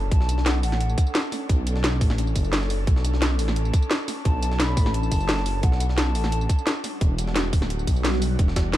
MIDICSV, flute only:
0, 0, Header, 1, 2, 480
1, 0, Start_track
1, 0, Key_signature, 2, "minor"
1, 0, Tempo, 344828
1, 160, Time_signature, 4, 2, 24, 8
1, 12209, End_track
2, 0, Start_track
2, 0, Title_t, "Flute"
2, 0, Program_c, 0, 73
2, 162, Note_on_c, 0, 81, 108
2, 644, Note_on_c, 0, 78, 90
2, 665, Note_off_c, 0, 81, 0
2, 877, Note_off_c, 0, 78, 0
2, 885, Note_on_c, 0, 78, 89
2, 1787, Note_off_c, 0, 78, 0
2, 5919, Note_on_c, 0, 81, 112
2, 6396, Note_on_c, 0, 83, 109
2, 6417, Note_off_c, 0, 81, 0
2, 6874, Note_on_c, 0, 81, 113
2, 6895, Note_off_c, 0, 83, 0
2, 7827, Note_off_c, 0, 81, 0
2, 7836, Note_on_c, 0, 78, 105
2, 8314, Note_on_c, 0, 81, 99
2, 8335, Note_off_c, 0, 78, 0
2, 9517, Note_off_c, 0, 81, 0
2, 12209, End_track
0, 0, End_of_file